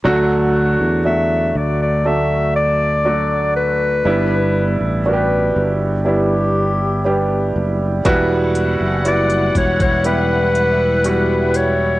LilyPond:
<<
  \new Staff \with { instrumentName = "Clarinet" } { \time 4/4 \key d \major \tempo 4 = 60 r4 e''8 d''16 d''16 e''8 d''4 b'8~ | b'4 b'8. r16 g'4. r8 | r4 d''8 cis''16 cis''16 b'4. cis''8 | }
  \new Staff \with { instrumentName = "String section" } { \time 4/4 \key d \major r1 | r1 | <g e' fis''>1 | }
  \new Staff \with { instrumentName = "Grand piano" } { \time 4/4 \key d \major <fis a d' fis'>4 <fis a d' fis'>4 <fis a d' a'>4 <fis a d' fis'>4 | <g b d' e'>4 <g b d' fis' g'>4 <g b d' e'>4 <g b d' g'>4 | <g b e' fis'>4 <g b e' fis'>4 <g b e' g'>4 <g b e' fis'>4 | }
  \new Staff \with { instrumentName = "Grand piano" } { \clef bass \time 4/4 \key d \major d4. r2 r8 | g,4. r2 r8 | e4. r2 r8 | }
  \new Staff \with { instrumentName = "Fretless electric bass" } { \clef bass \time 4/4 \key d \major d,8. e,8. d,2~ d,8 | g,,8. a,,8. g,,2 fis,,8 | e,,8. fis,,8. e,,2~ e,,8 | }
  \new DrumStaff \with { instrumentName = "Drums" } \drummode { \time 4/4 r4 r4 r4 r4 | r4 r4 r4 r4 | <hh bd>8 hh8 hh16 hh16 <hh bd>16 <hh bd>16 hh8 hh8 hh8 hh8 | }
>>